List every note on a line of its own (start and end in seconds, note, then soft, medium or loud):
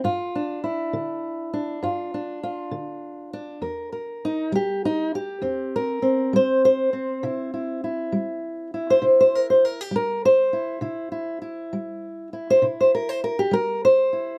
0.04 0.58 G2 medium
0.04 0.63 F4 medium
0.35 1.52 D4 medium
0.64 1.83 E4 medium
0.93 1.47 D3 medium
1.53 2.13 D4 medium
1.83 2.37 G2 medium
1.83 2.42 F4 medium
2.14 3.32 D4 medium
2.43 3.60 F4 medium
2.71 3.26 D3 medium
3.33 3.60 D4 medium
3.62 4.16 E2 medium
3.62 3.92 A#4 medium
3.92 5.75 A#4 soft
4.25 4.54 D#4 medium
4.52 5.07 G3 medium
4.52 4.84 G4 medium
4.85 5.14 D#4 medium
5.15 5.74 G4 medium
5.42 5.96 E2 medium
5.42 6.02 C4 soft
5.76 6.34 A#4 medium
6.02 6.93 C4 soft
6.33 6.87 G3 medium
6.33 6.64 C5 medium
6.65 8.44 C5 medium
6.93 9.38 C4 soft
7.23 7.77 C3 medium
7.23 7.53 E4 medium
7.54 7.83 E4 soft
7.84 8.74 E4 medium
8.12 8.67 G3 medium
8.74 9.02 E4 soft
8.90 9.04 C5 medium
9.02 9.56 C3 medium
9.02 9.81 E4 soft
9.21 9.35 C5 medium
9.35 9.49 A#4 medium
9.50 9.65 C5 medium
9.65 9.79 A#4 medium
9.81 9.94 G4 medium
9.91 10.46 G3 medium
9.96 10.24 A#4 medium
10.25 12.04 C5 medium
10.53 10.82 E4 soft
10.81 11.36 C3 medium
10.81 11.11 E4 medium
11.12 11.41 E4 soft
11.42 12.33 E4 medium
11.73 12.27 G3 medium
12.33 12.62 E4 soft
12.50 12.64 C5 loud
12.62 13.17 C3 medium
12.62 13.38 E4 soft
12.81 12.94 C5 medium
12.95 13.09 A#4 medium
13.09 13.23 C5 medium
13.24 13.39 A#4 medium
13.39 13.54 G4 medium
13.51 14.07 G3 medium
13.51 13.83 A#4 loud
13.85 14.38 C5 medium
14.13 14.38 E4 soft